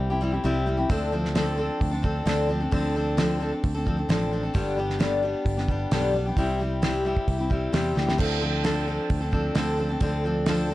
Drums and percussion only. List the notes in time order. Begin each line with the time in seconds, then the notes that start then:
0.90 kick, open hi-hat
1.25 snare
1.35 snare, open hi-hat
1.81 kick, open hi-hat
2.04 kick
2.27 snare, open hi-hat
2.72 kick, open hi-hat
3.18 snare, open hi-hat
3.64 kick, open hi-hat
3.87 kick
4.10 snare, open hi-hat
4.55 kick, open hi-hat
4.90 snare
5.00 snare, open hi-hat
5.46 kick, open hi-hat
5.58 snare
5.68 kick
5.91 snare, open hi-hat
6.37 kick, open hi-hat
6.83 snare, open hi-hat
7.17 kick
7.28 kick, open hi-hat
7.51 kick
7.74 snare, open hi-hat
7.97 snare
8.09 snare
8.19 kick, crash
8.64 snare, open hi-hat
9.10 kick, open hi-hat
9.33 kick
9.55 snare, open hi-hat
10.01 kick, open hi-hat
10.46 snare, open hi-hat